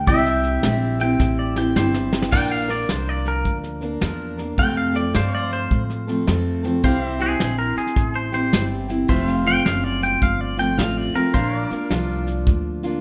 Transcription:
0.07 C2 C3 G3 C4 E4 G4 D5 E5 G5, kick, snare
0.26 snare
0.33 E5
0.43 snare
0.63 A#1 G3 C4 E4 G4, snare, hi-hat pedal
1.00 C4 E4 G4 G5, snare
1.19 A1, kick, snare
1.39 D5
1.56 C4 E4 G4 G5, snare
1.76 G1 G3 C4 E4 G4 C5, snare, hi-hat pedal
1.94 snare
2.13 snare
2.22 snare
2.32 A#1 A#2 F3 A#3 D4 A#4 D5 G5, kick, snare, crash
2.52 F5
2.59 F5
2.68 A#3 D4 A#4 D5, snare
2.89 C2 F3 A#3 D4 A#4 C5, snare, hi-hat pedal
3.09 D5
3.25 A#4, snare
3.45 D2, kick, snare
3.63 snare
3.81 A#3 D4 A#4, snare
4.01 E2 F3 A#3 D4 A#4, snare, hi-hat pedal
4.37 A#3 D4 A#4, snare
4.58 F2 C3 F3 A3 C4 A4 G5, kick, snare
4.77 F5
4.94 F3 A3 C4 A4 D5, snare
5.14 G2 F3 A3 C4 A4 C5 D5 F5, snare, hi-hat pedal
5.35 D5
5.40 C5
5.51 C5, snare
5.71 A2, kick, snare
5.89 snare
6.07 F3 A3 C4 A4, snare
6.27 F2 F3 A3 C4 A4, snare, hi-hat pedal
6.63 F3 A3 C4 A4, snare
6.83 C2 C3 G3 C4 E4 G4 C5 F5, kick, snare
7.05 E5
7.19 C4 E4 G4 G#4, snare
7.40 A#1 C4 E4, snare, hi-hat pedal
7.58 A#4
7.77 G#4, muted upright bass stroke, snare
7.87 snare
7.96 A1, kick, snare
8.15 C5
8.32 C4 E4 G4 C5, snare
8.52 G1 G3 C4 E4 G4, snare, hi-hat pedal
8.88 C4 E4 G4, snare
9.08 F1 F2 C3 F3 A3 C4 F4 C5 E5, kick, snare
9.28 F5, snare
9.45 F3 A3 C4 F4 G5, snare
9.65 F#1 F3 A3 C4 F4 F5, snare, hi-hat pedal
9.84 D5
10.02 G5, snare
10.22 G1 F5, kick, snare
10.41 D5
10.57 F3 A3 C4 F4 G5, snare
10.77 A1 F3 A3 C4 F4 F5, snare, hi-hat pedal
10.97 D5
11.14 F3 A3 C4 F4 A#4, muted upright bass stroke, snare
11.34 A#1 A#2 F3 A#3 D4 F4 C5 F5, kick, snare
11.59 D5
11.70 A#3 D4 F4, muted upright bass stroke, snare
11.90 C2 F3 A#3 D4 F4, snare, hi-hat pedal
12.27 snare
12.47 D2, kick, snare
12.83 A#3 D4 F4, snare

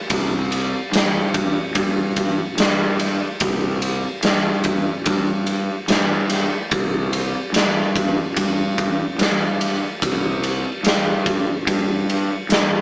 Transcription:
0.10 C2, kick, ride
0.52 ride
0.92 G2, snare, ride
1.34 kick, ride
1.75 G2, kick, ride
2.16 kick, ride
2.57 G2, snare, ride
2.99 ride
3.40 C2, kick, ride
3.82 ride
4.23 G2, snare, ride
4.64 kick, ride
5.06 G2, kick, ride
5.47 ride
5.88 G2, snare, ride
6.30 snare, ride
6.71 C2, kick, ride
7.13 ride
7.52 G2, snare, ride
7.96 kick, ride
8.36 G2, kick, ride
8.78 kick, ride
9.18 G2, snare, ride
9.61 ride
10.02 C2, kick, ride
10.43 ride
10.83 G2, snare, ride
11.26 kick, ride
11.67 G2, kick, ride
12.10 ride
12.49 G2, snare, ride

